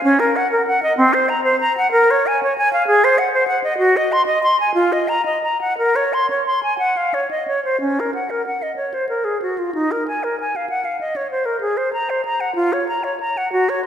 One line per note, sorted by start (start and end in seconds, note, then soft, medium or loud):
0.04 0.21 C#4 medium
0.20 0.38 A#4 medium
0.36 0.50 F#5 medium
0.52 0.65 A#4 medium
0.67 0.81 F#5 medium
0.83 0.96 D#5 medium
0.97 1.15 C4 medium
1.14 1.31 C5 medium
1.29 1.44 A#5 medium
1.44 1.59 C5 medium
1.61 1.76 A#5 medium
1.77 1.91 F#5 medium
1.92 2.12 A#4 medium
2.11 2.28 C#5 medium
2.27 2.41 G#5 medium
2.43 2.56 C#5 medium
2.58 2.71 G#5 medium
2.73 2.86 F5 medium
2.87 3.06 G#4 medium
3.04 3.20 C5 medium
3.18 3.33 F#5 medium
3.33 3.47 C5 medium
3.48 3.62 F#5 medium
3.64 3.77 D#5 medium
3.78 3.98 F#4 medium
3.97 4.14 D#5 medium
4.12 4.26 C6 medium
4.26 4.41 D#5 medium
4.43 4.58 C6 medium
4.60 4.74 G#5 medium
4.74 4.94 F4 medium
4.92 5.10 D#5 medium
5.08 5.25 A#5 medium
5.25 5.42 D#5 medium
5.43 5.60 A#5 medium
5.61 5.77 F#5 medium
5.78 5.97 A#4 medium
5.96 6.15 C#5 medium
6.13 6.30 C6 medium
6.30 6.46 C#5 medium
6.46 6.62 C6 medium
6.63 6.78 G#5 medium
6.78 6.98 F#5 medium
6.97 7.16 F5 medium
7.14 7.30 C#5 medium
7.31 7.47 D#5 medium
7.48 7.64 C#5 medium
7.65 7.80 C5 soft
7.81 8.01 C#4 medium
8.00 8.14 A#4 soft
8.15 8.32 F#5 soft
8.30 8.45 A#4 soft
8.46 8.64 F#5 soft
8.63 8.76 D#5 soft
8.76 8.95 C#5 soft
8.94 9.08 C5 soft
9.09 9.26 A#4 soft
9.25 9.41 G#4 soft
9.42 9.60 F#4 soft
9.58 9.74 F4 soft
9.75 9.93 D#4 medium
9.91 10.07 A#4 soft
10.08 10.25 G#5 soft
10.24 10.39 A#4 soft
10.40 10.58 G#5 soft
10.56 10.69 F5 soft
10.70 10.86 F#5 medium
10.85 11.00 F5 soft
11.01 11.18 D#5 soft
11.16 11.31 C#5 soft
11.31 11.47 C5 soft
11.46 11.60 A#4 soft
11.61 11.79 G#4 medium
11.77 11.93 C5 soft
11.93 12.11 A#5 soft
12.10 12.24 C5 soft
12.25 12.42 A#5 medium
12.40 12.55 F#5 medium
12.55 12.74 F4 medium
12.73 12.87 C#5 medium
12.89 13.05 A#5 soft
13.04 13.19 C#5 soft
13.20 13.39 A#5 medium
13.37 13.52 F#5 medium
13.52 13.71 F#4 medium
13.69 13.84 C#5 medium